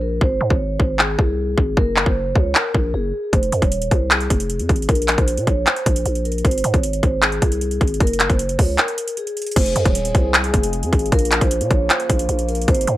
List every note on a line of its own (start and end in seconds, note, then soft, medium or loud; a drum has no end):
0.00 0.20 A#1 loud
0.00 0.17 A#4 medium
0.21 0.40 G#1 loud
0.21 0.49 C5 loud
0.21 kick loud
0.41 0.50 G#2 loud
0.50 0.78 G#1 loud
0.50 0.78 C#5 medium
0.50 kick medium
0.80 1.17 G#1 loud
0.80 0.96 C5 medium
0.80 kick medium
0.99 1.73 G#4 medium
0.99 clap loud
1.19 1.56 C2 loud
1.19 kick medium
1.58 1.76 G#1 loud
1.58 kick loud
1.77 2.05 F#1 loud
1.77 2.05 A#4 loud
1.77 kick loud
1.96 clap medium
2.06 2.34 F#1 loud
2.06 kick medium
2.35 2.54 C#2 loud
2.35 2.51 C#5 medium
2.35 kick medium
2.55 2.92 A#4 medium
2.55 clap loud
2.74 2.93 A#1 loud
2.74 kick loud
2.94 3.13 F#1 loud
2.94 3.31 G#4 medium
3.33 3.52 F1 loud
3.33 3.60 C5 medium
3.33 kick loud
3.33 closed hi-hat medium
3.43 closed hi-hat medium
3.52 3.61 F2 loud
3.52 closed hi-hat medium
3.62 3.90 D#1 loud
3.62 3.90 C#5 medium
3.62 kick medium
3.62 closed hi-hat soft
3.72 closed hi-hat medium
3.82 closed hi-hat medium
3.91 4.29 C2 loud
3.91 4.07 C5 medium
3.91 kick medium
3.91 closed hi-hat medium
4.11 4.85 G#4 medium
4.11 clap loud
4.11 closed hi-hat medium
4.21 closed hi-hat soft
4.30 4.61 F1 loud
4.30 kick medium
4.30 closed hi-hat loud
4.40 closed hi-hat medium
4.50 closed hi-hat medium
4.59 4.69 F2 loud
4.59 closed hi-hat medium
4.69 4.88 G#1 loud
4.69 kick loud
4.69 closed hi-hat soft
4.76 closed hi-hat medium
4.82 closed hi-hat medium
4.89 5.17 A#1 loud
4.89 5.16 A#4 loud
4.89 kick loud
4.89 closed hi-hat medium
4.95 closed hi-hat medium
5.02 closed hi-hat medium
5.08 clap medium
5.08 closed hi-hat medium
5.18 5.39 A#1 loud
5.18 5.45 C5 medium
5.18 kick loud
5.18 closed hi-hat medium
5.28 closed hi-hat loud
5.37 5.47 A#2 loud
5.37 closed hi-hat medium
5.47 5.66 A#1 loud
5.47 5.63 C#5 medium
5.47 kick medium
5.47 closed hi-hat medium
5.67 6.22 C5 medium
5.67 clap loud
5.67 closed hi-hat medium
5.76 closed hi-hat soft
5.86 6.05 A#1 loud
5.86 kick loud
5.86 closed hi-hat loud
5.96 closed hi-hat medium
6.06 6.43 A#1 loud
6.06 closed hi-hat medium
6.15 closed hi-hat medium
6.25 6.41 A#4 medium
6.25 closed hi-hat soft
6.32 closed hi-hat medium
6.38 closed hi-hat medium
6.44 6.63 G#1 loud
6.44 6.72 C5 loud
6.44 kick loud
6.44 closed hi-hat medium
6.51 closed hi-hat medium
6.58 closed hi-hat medium
6.64 6.73 G#2 loud
6.64 closed hi-hat medium
6.74 7.02 G#1 loud
6.74 7.01 C#5 medium
6.74 kick loud
6.74 closed hi-hat soft
6.83 closed hi-hat loud
6.93 closed hi-hat medium
7.03 7.40 G#1 loud
7.03 7.19 C5 medium
7.03 kick medium
7.03 closed hi-hat medium
7.22 7.97 G#4 loud
7.22 clap loud
7.22 closed hi-hat medium
7.32 closed hi-hat medium
7.42 7.79 C2 loud
7.42 kick loud
7.42 closed hi-hat loud
7.52 closed hi-hat medium
7.61 closed hi-hat medium
7.71 closed hi-hat medium
7.81 8.00 G#1 loud
7.81 kick loud
7.81 closed hi-hat soft
7.87 closed hi-hat medium
7.94 closed hi-hat medium
8.00 8.29 F#1 loud
8.00 8.28 A#4 loud
8.00 kick loud
8.00 closed hi-hat medium
8.07 closed hi-hat medium
8.13 closed hi-hat medium
8.20 clap medium
8.20 closed hi-hat medium
8.30 8.58 F#1 loud
8.30 kick medium
8.30 closed hi-hat soft
8.39 closed hi-hat loud
8.49 closed hi-hat medium
8.59 8.78 C#2 loud
8.59 8.74 C#5 medium
8.59 kick medium
8.59 open hi-hat medium
8.78 9.15 A#4 medium
8.78 clap loud
8.78 closed hi-hat medium
8.88 closed hi-hat soft
8.98 closed hi-hat loud
9.08 closed hi-hat medium
9.17 9.54 G#4 medium
9.17 closed hi-hat medium
9.27 closed hi-hat medium
9.37 closed hi-hat medium
9.42 closed hi-hat medium
9.47 closed hi-hat medium
9.51 closed hi-hat medium
9.56 9.75 F1 loud
9.56 12.65 F3 medium
9.56 11.11 G#3 medium
9.56 11.11 C4 medium
9.56 11.11 G#4 medium
9.56 9.84 C5 loud
9.56 kick loud
9.56 closed hi-hat medium
9.56 crash loud
9.66 closed hi-hat medium
9.76 9.85 F2 loud
9.76 closed hi-hat medium
9.85 10.14 D#1 loud
9.85 kick loud
9.85 closed hi-hat medium
9.95 closed hi-hat loud
10.05 closed hi-hat medium
10.15 10.52 C2 loud
10.15 10.30 C5 medium
10.15 kick medium
10.15 closed hi-hat medium
10.34 11.08 G#4 medium
10.34 clap loud
10.34 closed hi-hat medium
10.44 closed hi-hat medium
10.54 10.84 F1 loud
10.54 kick loud
10.54 closed hi-hat loud
10.63 closed hi-hat medium
10.73 closed hi-hat medium
10.83 10.92 F2 loud
10.83 closed hi-hat medium
10.93 11.11 G#1 loud
10.93 kick loud
10.93 closed hi-hat soft
10.99 closed hi-hat medium
11.06 closed hi-hat medium
11.12 11.40 A#1 loud
11.12 12.66 C#3 medium
11.12 12.97 A#3 medium
11.12 12.66 F4 medium
11.12 11.40 A#4 loud
11.12 kick loud
11.12 closed hi-hat medium
11.19 closed hi-hat medium
11.25 closed hi-hat medium
11.32 clap loud
11.32 closed hi-hat medium
11.41 11.62 A#1 loud
11.41 kick loud
11.41 closed hi-hat medium
11.51 closed hi-hat loud
11.61 11.70 A#2 medium
11.61 closed hi-hat medium
11.71 11.89 A#1 loud
11.71 11.86 C#5 loud
11.71 kick loud
11.71 closed hi-hat medium
11.90 12.45 C5 medium
11.90 clap loud
11.90 closed hi-hat medium
12.00 closed hi-hat medium
12.10 12.28 A#1 loud
12.10 kick loud
12.10 closed hi-hat loud
12.19 closed hi-hat medium
12.29 12.66 A#1 loud
12.29 closed hi-hat medium
12.39 closed hi-hat medium
12.48 12.64 A#4 medium
12.48 closed hi-hat soft
12.55 closed hi-hat medium
12.62 closed hi-hat medium
12.68 12.87 G#1 loud
12.68 12.97 C3 medium
12.68 12.97 G#3 medium
12.68 12.97 D#4 medium
12.68 12.95 C5 loud
12.68 kick loud
12.68 closed hi-hat medium
12.74 closed hi-hat medium
12.81 closed hi-hat medium
12.87 12.97 G#2 loud
12.87 closed hi-hat medium